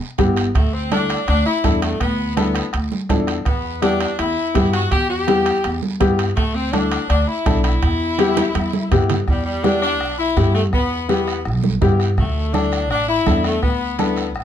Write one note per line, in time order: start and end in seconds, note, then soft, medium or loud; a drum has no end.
0.18 0.48 G1 medium
0.18 0.44 B3 medium
0.18 0.44 E4 medium
0.18 0.44 G4 medium
0.18 bombo low medium
0.18 bombo rim medium
0.18 high conga medium
0.18 high timbale medium
0.18 short guiro medium
0.36 bombo rim medium
0.36 high timbale medium
0.36 short guiro medium
0.55 1.13 D2 medium
0.55 0.73 A3 medium
0.55 bombo low medium
0.55 bombo rim medium
0.55 high timbale medium
0.55 long guiro medium
0.74 0.92 C4 medium
0.91 1.17 D4 medium
0.91 1.26 D4 medium
0.91 1.17 E4 medium
0.91 1.17 A4 medium
0.91 bombo rim medium
0.91 high conga medium
0.91 high timbale medium
0.91 short guiro medium
1.09 bombo rim medium
1.09 high timbale medium
1.09 short guiro medium
1.27 1.43 D2 loud
1.27 1.45 D4 loud
1.27 bombo rim medium
1.27 high timbale medium
1.27 long guiro medium
1.46 1.80 E4 medium
1.64 1.93 E2 medium
1.64 1.90 D4 medium
1.64 1.90 E4 medium
1.64 1.90 A4 medium
1.64 bombo low medium
1.64 bombo rim medium
1.64 high conga medium
1.64 high timbale medium
1.64 short guiro medium
1.82 1.99 A3 medium
1.82 bombo rim medium
1.82 high timbale medium
1.82 short guiro medium
2.00 2.59 D2 medium
2.00 2.35 B3 medium
2.00 bombo low medium
2.00 bombo rim medium
2.00 high timbale medium
2.00 long guiro soft
2.37 2.71 B3 medium
2.37 2.62 D4 medium
2.37 2.63 E4 medium
2.37 2.63 A4 medium
2.37 bombo rim medium
2.37 high conga medium
2.37 high timbale medium
2.37 short guiro medium
2.55 bombo rim medium
2.55 high timbale medium
2.55 short guiro medium
2.73 2.88 D2 medium
2.73 bombo rim medium
2.73 high timbale medium
2.73 long guiro medium
2.92 high conga medium
3.09 3.39 E2 medium
3.09 3.35 D4 medium
3.09 3.35 E4 medium
3.09 3.35 A4 medium
3.09 bombo low medium
3.09 bombo rim medium
3.09 high conga medium
3.09 high timbale medium
3.09 low timbale medium
3.09 short guiro medium
3.27 bombo rim medium
3.27 high timbale medium
3.27 short guiro medium
3.45 4.04 E2 medium
3.45 3.80 B3 medium
3.45 bombo low medium
3.45 bombo rim medium
3.45 high timbale medium
3.45 long guiro medium
3.82 4.08 B3 medium
3.82 3.99 D4 medium
3.82 4.08 E4 medium
3.82 4.08 G4 medium
3.82 bombo rim medium
3.82 high conga medium
3.82 high timbale medium
3.82 short guiro medium
4.00 4.18 D4 medium
4.00 bombo rim medium
4.00 high timbale medium
4.00 short guiro medium
4.19 4.34 E2 medium
4.19 4.70 E4 medium
4.19 bombo rim medium
4.19 high timbale medium
4.19 long guiro medium
4.54 4.84 G2 medium
4.54 4.80 B3 medium
4.54 4.81 E4 medium
4.54 4.81 G4 medium
4.54 bombo low medium
4.54 bombo rim medium
4.54 high conga medium
4.54 high timbale medium
4.54 short guiro medium
4.73 4.90 F#4 medium
4.73 bombo rim medium
4.73 high timbale medium
4.73 short guiro medium
4.92 5.50 E2 medium
4.92 5.09 G4 loud
4.92 bombo low medium
4.92 bombo rim medium
4.92 high timbale medium
4.92 long guiro medium
5.10 5.78 G4 medium
5.27 5.53 B3 medium
5.27 5.53 E4 medium
5.27 5.54 G4 medium
5.27 bombo rim medium
5.27 high conga medium
5.27 high timbale medium
5.27 short guiro medium
5.46 bombo rim medium
5.46 high timbale medium
5.46 short guiro medium
5.64 5.79 E2 medium
5.64 bombo rim medium
5.64 high timbale medium
5.64 long guiro medium
5.82 high conga medium
6.00 6.30 G2 medium
6.00 6.26 B3 medium
6.00 6.26 E4 medium
6.00 6.26 G4 medium
6.00 bombo low medium
6.00 bombo rim medium
6.00 high conga medium
6.00 high timbale medium
6.00 short guiro medium
6.19 bombo rim medium
6.19 high timbale medium
6.19 short guiro medium
6.37 6.95 D2 medium
6.37 6.54 A3 medium
6.37 bombo low medium
6.37 bombo rim medium
6.37 high timbale medium
6.37 long guiro medium
6.55 6.73 C4 medium
6.73 6.99 D4 medium
6.73 7.09 D4 medium
6.73 6.99 E4 medium
6.73 6.99 A4 medium
6.73 bombo rim medium
6.73 high conga medium
6.73 high timbale medium
6.73 short guiro medium
6.92 bombo rim medium
6.92 high timbale medium
6.92 short guiro medium
7.10 7.24 D2 medium
7.10 7.27 D4 loud
7.10 bombo rim medium
7.10 high timbale medium
7.10 long guiro medium
7.27 7.63 E4 medium
7.46 7.75 B1 medium
7.46 7.71 D4 medium
7.46 7.71 E4 medium
7.46 7.72 A4 medium
7.46 bombo low medium
7.46 bombo rim medium
7.46 high conga medium
7.46 high timbale medium
7.46 short guiro medium
7.64 9.05 E4 medium
7.64 bombo rim medium
7.64 high timbale medium
7.64 short guiro medium
7.82 8.41 E2 medium
7.82 bombo low medium
7.82 bombo rim medium
7.82 high timbale medium
7.82 long guiro soft
8.19 8.44 B3 medium
8.19 8.44 E4 medium
8.19 8.45 G4 medium
8.19 bombo rim medium
8.19 high conga medium
8.19 high timbale medium
8.19 short guiro medium
8.37 bombo rim medium
8.37 high conga loud
8.37 high timbale medium
8.37 short guiro medium
8.55 8.70 E2 medium
8.55 bombo rim medium
8.55 high conga medium
8.55 high timbale medium
8.55 long guiro medium
8.73 high conga medium
8.91 9.21 G2 medium
8.91 9.17 B3 medium
8.91 9.17 E4 medium
8.91 9.17 G4 medium
8.91 bombo low medium
8.91 bombo rim medium
8.91 low conga medium
8.91 high timbale medium
8.91 short guiro medium
9.10 bombo rim medium
9.10 low conga medium
9.10 high timbale medium
9.10 short guiro medium
9.28 10.01 E2 medium
9.28 9.45 G3 medium
9.28 bombo low medium
9.28 bombo rim medium
9.28 long guiro medium
9.46 9.63 G3 medium
9.64 9.89 B3 medium
9.64 9.81 D4 medium
9.64 9.89 E4 medium
9.64 9.90 G4 medium
9.64 bombo rim medium
9.64 high conga medium
9.64 short guiro medium
9.82 10.16 D4 loud
9.82 bombo rim medium
9.82 short guiro medium
10.00 10.30 B1 loud
10.00 bombo rim medium
10.00 long guiro medium
10.19 10.52 E4 medium
10.37 10.73 G2 loud
10.37 10.62 B3 medium
10.37 10.62 E4 medium
10.37 10.62 G4 medium
10.37 bombo low medium
10.37 bombo rim medium
10.37 high conga medium
10.37 short guiro medium
10.55 10.63 A3 medium
10.55 bombo rim medium
10.55 short guiro medium
10.73 11.47 E2 medium
10.73 11.07 B3 medium
10.73 bombo low medium
10.73 bombo rim medium
10.73 long guiro medium
11.09 11.34 B3 medium
11.09 11.43 B3 medium
11.09 11.34 E4 medium
11.09 11.35 G4 medium
11.09 bombo rim medium
11.09 high conga medium
11.09 short guiro medium
11.27 bombo rim medium
11.27 short guiro medium
11.45 11.74 B1 medium
11.45 bombo rim medium
11.45 long guiro medium
11.64 high conga medium
11.81 12.19 G2 loud
11.81 12.07 B3 medium
11.81 12.07 E4 medium
11.81 12.07 G4 medium
11.81 bombo low medium
11.81 bombo rim medium
11.81 high conga medium
11.81 low conga medium
11.81 short guiro medium
12.00 bombo rim medium
12.00 short guiro medium
12.17 12.90 D2 medium
12.17 12.52 A3 medium
12.17 bombo low medium
12.17 bombo rim medium
12.17 long guiro medium
12.54 12.79 D4 medium
12.54 12.90 D4 medium
12.54 12.79 E4 medium
12.54 12.80 A4 medium
12.54 bombo rim medium
12.54 high conga medium
12.54 short guiro medium
12.72 bombo rim medium
12.72 short guiro medium
12.90 13.19 A1 loud
12.90 13.07 D4 loud
12.90 bombo rim medium
12.90 long guiro medium
13.09 13.42 E4 loud
13.26 13.63 E2 loud
13.26 13.52 D4 medium
13.26 13.52 E4 medium
13.26 13.52 A4 medium
13.26 bombo low medium
13.26 bombo rim medium
13.26 high conga medium
13.26 short guiro medium
13.44 13.63 A3 medium
13.44 bombo rim medium
13.44 short guiro medium
13.62 14.35 D2 medium
13.62 13.96 B3 medium
13.62 bombo low medium
13.62 bombo rim medium
13.62 long guiro medium
13.99 14.33 B3 medium
13.99 14.24 D4 medium
13.99 14.24 E4 medium
13.99 14.25 A4 medium
13.99 bombo rim medium
13.99 high conga medium
13.99 short guiro medium
14.16 bombo rim medium
14.16 short guiro medium
14.35 14.44 A1 medium
14.35 bombo rim medium
14.35 long guiro medium